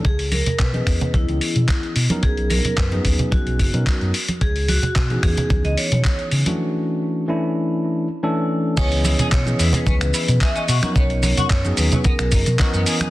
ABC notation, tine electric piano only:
X:1
M:4/4
L:1/16
Q:1/4=110
K:C#dor
V:1 name="Tine electric piano"
z4 z [E,B,CGd]8- [E,B,CGd] z [F,B,CDA]- | [F,B,CDA]4- [F,B,CDA] [F,B,CDG]6 [F,B,CDA]3 z2 | z4 z [E,B,CDG]8- [E,B,CDG]2 [E,=A,C=DF]- | [E,=A,C=DF]4- [E,A,CDF] [E,A,CDE]6 z [E,A,CD=A]4 |
[E,B,CGd]4- [E,B,CGd] [E,B,CGd]8- [E,B,CGd] z [F,B,CDA]- | [F,B,CDA]4- [F,B,CDA] [F,B,CDG]6 z [E,B,CAd]4 |]